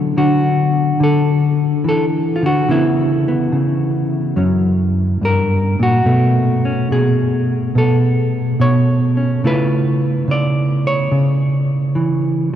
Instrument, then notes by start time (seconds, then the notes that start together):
hollow-body jazz guitar
Already playing: D3 F#3 C#4 A4
0.17 D3 F#4
1.00 D3 A4
1.84 E3
1.89 A4
2.36 F4
2.43 D3 F#4
2.69 C#3 E3 B3 E4
3.28 B3
3.52 C#3
4.36 F#2 F#3 C#4
5.21 G2 A#4
5.79 A#2 F#4
6.06 B2 A3
6.65 C#4
6.91 B2 G#4
7.75 B2 A4
8.60 B2 C#5
9.17 C#4
9.44 C#3 A3 E4 F4 B4
10.28 C#3 D5
10.87 C#5
11.12 C#3
11.95 E3